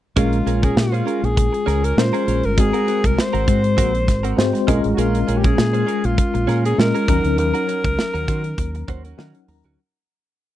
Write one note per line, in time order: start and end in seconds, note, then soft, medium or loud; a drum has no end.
0.16 0.41 A#1 medium
0.16 1.15 G#3 medium
0.16 0.37 C#4 medium
0.16 1.15 C#4 medium
0.16 1.16 F4 medium
0.16 0.66 F4 medium
0.16 0.37 G#4 medium
0.16 0.37 A#4 medium
0.16 1.16 A#4 medium
0.16 kick medium
0.16 closed hi-hat medium
0.33 closed hi-hat soft
0.46 0.71 A#1 medium
0.46 0.63 C#4 soft
0.46 0.62 G#4 medium
0.46 0.61 A#4 medium
0.46 closed hi-hat medium
0.62 0.76 C#4 medium
0.62 0.76 G#4 medium
0.62 0.80 G#4 medium
0.62 0.77 A#4 medium
0.62 kick medium
0.62 closed hi-hat soft
0.77 1.01 A#2 medium
0.77 1.26 F4 medium
0.77 muted clean electric guitar stroke soft
0.77 snare loud
0.92 1.04 C#4 soft
0.92 1.05 G#4 soft
0.92 1.07 C5 soft
0.92 closed hi-hat soft
1.05 1.26 C#4 medium
1.05 1.22 G#4 medium
1.05 1.21 A#4 medium
1.05 closed hi-hat medium
1.22 1.48 A#1 medium
1.22 1.86 G#4 medium
1.22 muted clean electric guitar stroke soft
1.22 closed hi-hat soft
1.36 muted clean electric guitar stroke soft
1.36 kick medium
1.36 closed hi-hat medium
1.53 muted clean electric guitar stroke soft
1.53 closed hi-hat soft
1.66 1.92 C#2 medium
1.66 1.83 C#4 medium
1.66 1.82 G#4 medium
1.66 1.81 A#4 medium
1.66 snare soft
1.66 closed hi-hat medium
1.83 1.96 C#4 soft
1.83 1.96 G#4 medium
1.83 1.97 A#4 medium
1.83 2.00 A#4 medium
1.83 closed hi-hat medium
1.97 2.10 A#2 medium
1.97 2.47 G#3 medium
1.97 2.47 C#4 medium
1.97 2.47 F4 medium
1.97 2.48 A#4 medium
1.97 2.47 C5 loud
1.97 snare loud
2.13 2.25 C#4 medium
2.13 2.26 G#4 medium
2.13 2.27 A#4 medium
2.13 closed hi-hat medium
2.26 2.41 A#1 medium
2.26 2.43 C#4 medium
2.26 2.43 G#4 medium
2.26 2.42 A#4 medium
2.26 closed hi-hat medium
2.43 2.58 G1 medium
2.43 2.61 A#4 medium
2.43 muted clean electric guitar stroke soft
2.43 closed hi-hat soft
2.57 2.71 G#1 medium
2.57 3.56 G#3 medium
2.57 3.56 C4 medium
2.57 3.57 F#4 medium
2.57 3.08 G#4 loud
2.57 3.57 A#4 medium
2.57 muted clean electric guitar stroke soft
2.57 kick medium
2.57 closed hi-hat medium
2.73 2.86 C4 medium
2.73 2.87 F#4 medium
2.73 2.87 A#4 medium
2.73 closed hi-hat soft
2.87 3.04 C4 medium
2.87 3.03 F#4 medium
2.87 3.02 A#4 medium
2.87 closed hi-hat medium
3.04 3.15 C2 medium
3.04 3.22 A#4 medium
3.04 kick medium
3.04 closed hi-hat soft
3.17 4.70 C5 medium
3.17 muted clean electric guitar stroke soft
3.17 snare loud
3.33 3.45 G#1 medium
3.33 3.46 C4 medium
3.33 3.47 F#4 medium
3.33 3.48 A#4 medium
3.33 closed hi-hat soft
3.47 3.79 G#2 medium
3.47 3.64 C4 medium
3.47 3.63 F#4 medium
3.47 3.63 C5 medium
3.47 kick medium
3.47 closed hi-hat medium
3.63 muted clean electric guitar stroke soft
3.63 closed hi-hat medium
3.77 4.08 A#1 medium
3.77 3.98 C4 medium
3.77 3.93 F#4 loud
3.77 3.92 A#4 medium
3.77 kick medium
3.77 closed hi-hat medium
3.93 muted clean electric guitar stroke medium
3.93 closed hi-hat soft
4.07 4.33 G#1 medium
4.07 muted clean electric guitar stroke soft
4.07 kick medium
4.07 snare soft
4.07 closed hi-hat medium
4.23 4.36 C4 medium
4.23 4.37 F#4 medium
4.23 4.37 A#4 medium
4.23 closed hi-hat medium
4.37 4.51 G#2 medium
4.37 4.66 G#3 medium
4.37 4.68 C4 medium
4.37 4.68 F#4 medium
4.37 4.68 C5 medium
4.37 muted clean electric guitar stroke soft
4.37 snare loud
4.53 muted clean electric guitar stroke soft
4.53 snare soft
4.53 closed hi-hat soft
4.67 4.81 A#1 medium
4.67 5.67 G#3 medium
4.67 4.88 C#4 medium
4.67 5.67 C#4 medium
4.67 5.67 F4 medium
4.67 4.83 G#4 medium
4.67 5.67 A#4 loud
4.67 4.82 A#4 medium
4.67 kick loud
4.67 closed hi-hat medium
4.84 4.96 A1 medium
4.84 muted clean electric guitar stroke soft
4.84 closed hi-hat soft
4.93 5.01 F#4 medium
4.97 5.22 A#1 medium
4.97 5.18 C#4 medium
4.97 5.39 F4 medium
4.97 5.18 G#4 medium
4.97 5.19 A#4 medium
4.97 closed hi-hat medium
5.15 closed hi-hat soft
5.27 5.53 A#1 medium
5.27 5.44 C#4 medium
5.27 5.43 G#4 medium
5.27 5.42 A#4 medium
5.27 closed hi-hat medium
5.38 5.47 G4 medium
5.44 5.56 C#4 medium
5.44 5.56 G#4 medium
5.44 6.07 G#4 medium
5.44 5.57 A#4 medium
5.44 kick medium
5.44 closed hi-hat soft
5.57 5.83 A#2 medium
5.57 muted clean electric guitar stroke soft
5.57 snare loud
5.73 5.85 C#4 soft
5.73 5.86 G#4 soft
5.73 5.88 C5 medium
5.73 closed hi-hat soft
5.86 6.07 C#4 medium
5.86 6.03 G#4 medium
5.86 6.02 A#4 medium
5.86 closed hi-hat medium
6.03 6.16 A#1 loud
6.03 6.65 F4 medium
6.03 muted clean electric guitar stroke soft
6.03 closed hi-hat medium
6.17 muted clean electric guitar stroke soft
6.17 kick medium
6.17 closed hi-hat medium
6.34 6.46 A#1 medium
6.34 muted clean electric guitar stroke soft
6.34 closed hi-hat soft
6.47 6.73 A#2 loud
6.47 6.65 C#4 medium
6.47 6.64 G#4 medium
6.47 6.63 A#4 medium
6.47 snare soft
6.47 closed hi-hat medium
6.64 6.77 C#4 soft
6.64 6.78 G#4 medium
6.64 6.81 G#4 medium
6.64 6.78 A#4 medium
6.64 closed hi-hat medium
6.78 6.91 A#2 medium
6.78 7.08 G#3 medium
6.78 7.07 C#4 medium
6.78 7.09 F4 medium
6.78 7.38 A#4 loud
6.78 7.08 A#4 medium
6.78 muted clean electric guitar stroke soft
6.78 snare loud
6.94 7.06 C#4 medium
6.94 7.08 G#4 medium
6.94 7.08 A#4 medium
6.94 closed hi-hat soft
7.08 7.22 D#2 medium
7.08 8.07 F#3 medium
7.08 7.24 C#4 medium
7.08 8.07 C#4 medium
7.08 8.07 D#4 medium
7.08 7.24 F#4 medium
7.08 8.07 A#4 medium
7.08 7.23 A#4 medium
7.08 kick loud
7.08 closed hi-hat medium
7.24 7.38 D2 medium
7.24 muted clean electric guitar stroke soft
7.24 closed hi-hat soft
7.37 7.52 D#2 medium
7.37 9.15 A#4 loud
7.37 muted clean electric guitar stroke soft
7.37 closed hi-hat medium
7.54 7.66 C#4 medium
7.54 7.67 F#4 medium
7.54 7.68 A#4 medium
7.54 closed hi-hat soft
7.68 7.84 C#4 medium
7.68 7.83 F#4 medium
7.68 7.82 A#4 medium
7.68 closed hi-hat medium
7.83 7.96 C#2 medium
7.83 muted clean electric guitar stroke soft
7.83 kick medium
7.83 closed hi-hat soft
7.98 muted clean electric guitar stroke soft
7.98 snare loud
8.14 8.26 D#2 medium
8.14 8.26 C#4 medium
8.14 8.27 F#4 medium
8.14 8.28 A#4 medium
8.14 closed hi-hat soft
8.27 8.53 D#3 medium
8.27 8.44 C#4 medium
8.27 8.44 F#4 medium
8.27 8.43 C5 medium
8.27 kick medium
8.27 closed hi-hat medium
8.44 muted clean electric guitar stroke soft
8.44 closed hi-hat soft
8.58 8.83 D#2 medium
8.58 muted clean electric guitar stroke soft
8.58 kick medium
8.58 closed hi-hat medium
8.75 muted clean electric guitar stroke soft
8.75 closed hi-hat soft
8.88 9.13 D#2 medium
8.88 9.04 C#4 medium
8.88 9.04 F#4 medium
8.88 9.04 C5 medium
8.88 kick medium
8.88 closed hi-hat medium
9.04 9.17 C#4 soft
9.04 9.18 F#4 medium
9.04 9.18 A#4 medium
9.04 closed hi-hat medium
9.17 9.32 D#3 medium
9.17 9.68 F#3 medium
9.17 9.68 C#4 medium
9.17 9.38 C#4 medium
9.17 9.68 D#4 medium
9.17 9.34 F#4 medium
9.17 9.68 A#4 medium
9.17 9.34 A#4 medium
9.17 9.46 F#5 medium
9.17 snare loud
9.35 muted clean electric guitar stroke soft
9.35 closed hi-hat soft
9.48 9.61 D#2 medium
9.48 9.76 A#5 medium
9.48 muted clean electric guitar stroke soft
9.48 open hi-hat medium
9.64 9.76 D2 medium
9.64 9.79 C#4 medium
9.64 9.79 F#4 medium
9.64 9.78 A#4 medium
9.64 closed hi-hat soft